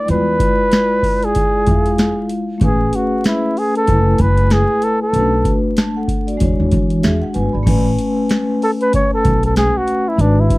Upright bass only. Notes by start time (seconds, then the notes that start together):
0.09 E2
1.67 F2
2.61 A1
3.88 F#1
4.20 F#1
5.13 B1
6.41 E2
6.60 E2
6.72 E3
7.04 E2
7.36 G1
7.55 G#1
7.67 A1
9.25 B1
10.18 G#1